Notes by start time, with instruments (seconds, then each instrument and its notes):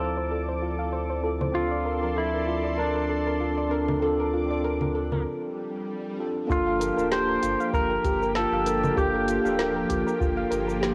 Already playing: sub bass D2, analog synth pad F3 D5 D6, tine electric piano C4 E4 F4 A4, pedal steel guitar A4
0.17 synth pluck C5
0.31 synth pluck A4
0.48 synth pluck C5
0.62 synth pluck F4
0.79 synth pluck F5
0.93 synth pluck C5
1.10 synth pluck C5
1.21 tine electric piano C4 E4 F4, synth pluck A4
1.25 tine electric piano A4
1.41 synth pluck C5, low conga
1.52 sub bass D2, tine electric piano C4 D4 F4, synth pluck F4, pedal steel guitar F4, analog synth pad A4 D5 C6
1.56 tine electric piano A4
1.71 synth pluck D5
1.85 synth pluck A#4
1.98 tine electric piano C4 D4
2.03 tine electric piano F3 A4, synth pluck A#4
2.16 pedal steel guitar E4, synth pluck A4
2.34 synth pluck A#4
2.47 synth pluck F4
2.64 synth pluck D5
2.78 pedal steel guitar D4, synth pluck A#4
2.95 synth pluck A#4
3.09 synth pluck A4
3.27 synth pluck A#4
3.40 synth pluck F4
3.58 synth pluck D5
3.68 tine electric piano C4 D4 F4 A4, synth pluck A#4
3.88 synth pluck A#4, low conga
4.00 tine electric piano C4 D4 F4 A4, synth pluck A4, analog synth pad D6
4.20 synth pluck A#4
4.33 synth pluck F4
4.46 tine electric piano C4 D4
4.50 tine electric piano F4 A4, synth pluck D5
4.64 synth pluck A#4
4.81 synth pluck A#4, low conga
4.95 synth pluck A4
5.12 synth pluck A#4, low conga
5.25 swell
6.16 tine electric piano C4 D4 F4 A4
6.47 sub bass G1, analog synth pad F3 G4, tine electric piano A#3 D4 F4 A4, synth pluck F4, kick, shaker
6.51 analog synth pad A#3, pedal steel guitar F4
6.67 synth pluck F5
6.80 synth pluck A#4, closed hi-hat, shaker
6.94 sub bass D1, tine electric piano A#3 D4, synth pluck A#4
6.99 tine electric piano F4 A5, shaker
7.11 synth pluck G4, pedal steel guitar C5, snare, shaker
7.29 synth pluck A#4
7.43 sub bass G1, synth pluck F4, closed hi-hat, shaker
7.60 synth pluck F5, shaker
7.73 sub bass G1, synth pluck A#4, pedal steel guitar A#4, kick, shaker
7.91 synth pluck A#4
8.04 sub bass G1, synth pluck G4, kick, closed hi-hat, shaker
8.22 synth pluck A#4, shaker
8.35 synth pluck F4, pedal steel guitar A4, snare, shaker
8.51 sub bass G1, synth pluck F5
8.64 tine electric piano A#3 D4 F4 A4, synth pluck A#4, closed hi-hat, shaker
8.83 synth pluck A#4, low conga, shaker
8.95 sub bass G1, tine electric piano A#3 D4 F4, synth pluck G4, pedal steel guitar G4, kick, shaker
8.99 tine electric piano A4
9.14 synth pluck A#4
9.28 synth pluck F4, closed hi-hat, shaker
9.41 sub bass D1, tine electric piano A#3 D4, synth pluck F5
9.46 tine electric piano F4 A4, shaker
9.58 synth pluck A#4, snare, shaker
9.76 synth pluck A#4
9.89 sub bass G1, synth pluck G4, kick, closed hi-hat, shaker
10.07 synth pluck A#4, shaker
10.20 sub bass G1, synth pluck F4, kick, shaker
10.37 synth pluck F5
10.51 sub bass G1, synth pluck A#4, closed hi-hat, shaker
10.68 synth pluck A#4, shaker
10.81 synth pluck G4, snare, shaker